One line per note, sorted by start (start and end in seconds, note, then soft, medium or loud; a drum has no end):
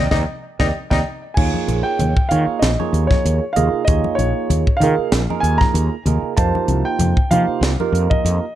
0.11 0.24 D#2 medium
0.11 0.19 D#4 medium
0.11 0.22 D#4 medium
0.11 0.22 G4 medium
0.11 0.22 A#4 medium
0.11 0.22 D5 medium
0.11 0.22 D#5 medium
0.11 0.22 G5 medium
0.11 kick medium
0.11 snare medium
0.11 low conga medium
0.59 0.71 D#2 medium
0.59 0.69 D#4 medium
0.59 0.67 D#4 medium
0.59 0.69 G4 medium
0.59 0.69 A#4 medium
0.59 0.69 D5 medium
0.59 0.69 D#5 medium
0.59 0.69 G5 medium
0.59 kick medium
0.59 snare medium
0.59 low conga medium
0.90 1.02 D#2 medium
0.90 1.00 D#4 medium
0.90 0.99 D#4 medium
0.90 1.00 G4 medium
0.90 1.00 A#4 medium
0.90 1.00 D5 medium
0.90 1.00 D#5 medium
0.90 1.00 G5 medium
0.90 kick medium
0.90 snare medium
0.90 low conga medium
1.34 1.50 D#2 medium
1.34 2.15 A#3 medium
1.34 2.15 D#4 medium
1.34 2.15 F4 medium
1.34 2.15 G#4 medium
1.34 2.15 C#5 medium
1.34 1.85 G#5 medium
1.34 kick loud
1.34 crash loud
1.54 high conga medium
1.68 1.81 A#1 medium
1.68 closed hi-hat medium
1.68 high conga medium
1.83 2.32 G5 medium
1.99 2.13 D#2 medium
1.99 closed hi-hat medium
1.99 high conga medium
1.99 low conga medium
2.17 kick medium
2.29 2.44 D#3 medium
2.29 2.70 A#3 medium
2.29 2.70 D#4 medium
2.29 2.70 F4 medium
2.29 2.70 G#4 medium
2.29 2.70 C#5 medium
2.29 2.59 F5 medium
2.29 closed hi-hat medium
2.29 low conga medium
2.47 muted fretless electric bass stroke soft
2.59 2.76 A#1 loud
2.59 3.10 D#5 medium
2.59 snare loud
2.59 closed hi-hat medium
2.79 3.43 A#3 medium
2.79 3.43 D#4 medium
2.79 3.43 F4 medium
2.79 3.43 G#4 medium
2.79 3.43 C#5 medium
2.79 high conga medium
2.93 3.06 D#2 medium
2.93 closed hi-hat medium
3.07 3.51 C#5 medium
3.07 kick medium
3.07 snare soft
3.07 high conga medium
3.25 3.39 D#2 medium
3.25 closed hi-hat medium
3.53 3.82 A#3 medium
3.53 3.82 D#4 medium
3.53 3.82 F4 medium
3.53 3.82 G#4 medium
3.53 3.82 D#5 medium
3.53 3.84 F5 medium
3.53 closed hi-hat medium
3.53 low conga medium
3.57 3.70 D#2 medium
3.85 4.01 D#2 medium
3.85 4.66 A#3 medium
3.85 4.66 D#4 medium
3.85 4.66 C#5 medium
3.85 4.19 D#5 medium
3.85 kick loud
3.85 closed hi-hat medium
3.89 4.66 F4 medium
3.89 4.66 G#4 medium
4.04 high conga medium
4.15 4.32 A#1 medium
4.15 4.76 C#5 medium
4.15 closed hi-hat medium
4.19 high conga medium
4.50 4.63 D#2 medium
4.50 closed hi-hat medium
4.50 high conga medium
4.50 low conga medium
4.67 kick medium
4.77 4.94 D#3 medium
4.77 5.44 F5 medium
4.81 5.21 A#3 medium
4.81 5.21 D#4 medium
4.81 5.21 F4 medium
4.81 5.21 G#4 medium
4.81 5.21 A#4 medium
4.81 closed hi-hat medium
4.81 low conga medium
4.98 muted fretless electric bass stroke soft
5.12 5.26 A#1 medium
5.12 snare loud
5.12 closed hi-hat medium
5.30 5.94 A#3 medium
5.30 5.94 D#4 medium
5.30 5.94 F4 medium
5.30 5.94 G#4 medium
5.30 5.94 A#4 medium
5.30 high conga medium
5.40 5.57 D#2 medium
5.40 5.58 G#5 medium
5.40 closed hi-hat medium
5.58 6.02 A#5 loud
5.58 kick medium
5.58 snare soft
5.58 high conga medium
5.74 5.88 D#2 medium
5.74 closed hi-hat medium
6.06 6.19 D#2 loud
6.06 6.33 A#3 medium
6.06 6.33 D#4 medium
6.06 6.33 F4 medium
6.06 6.33 G#4 medium
6.06 6.33 A#4 medium
6.06 closed hi-hat medium
6.06 low conga medium
6.22 muted fretless electric bass stroke soft
6.37 6.51 F2 medium
6.37 7.16 A#3 medium
6.37 7.16 D#4 medium
6.37 7.16 F4 medium
6.37 7.16 G4 medium
6.37 7.16 C5 medium
6.37 6.87 A5 medium
6.37 kick loud
6.37 closed hi-hat medium
6.55 high conga medium
6.68 6.82 C2 medium
6.68 closed hi-hat medium
6.68 high conga medium
6.85 7.33 G5 medium
6.99 7.13 F2 medium
6.99 closed hi-hat medium
6.99 high conga medium
6.99 low conga medium
7.17 kick medium
7.31 7.45 F3 medium
7.31 7.71 A#3 medium
7.31 7.71 D#4 medium
7.31 7.71 F4 medium
7.31 7.71 G4 medium
7.31 7.71 C5 medium
7.31 8.13 F5 medium
7.31 closed hi-hat medium
7.31 low conga medium
7.48 muted fretless electric bass stroke soft
7.61 7.75 C2 medium
7.61 snare loud
7.61 closed hi-hat medium
7.80 8.44 A#3 medium
7.80 8.44 D#4 medium
7.80 8.44 F4 medium
7.80 8.44 G4 medium
7.80 8.44 A#4 medium
7.80 high conga medium
7.92 8.07 F2 medium
7.92 closed hi-hat medium
8.10 8.55 D#5 medium
8.10 kick medium
8.10 high conga medium
8.25 8.38 F2 loud
8.25 closed hi-hat medium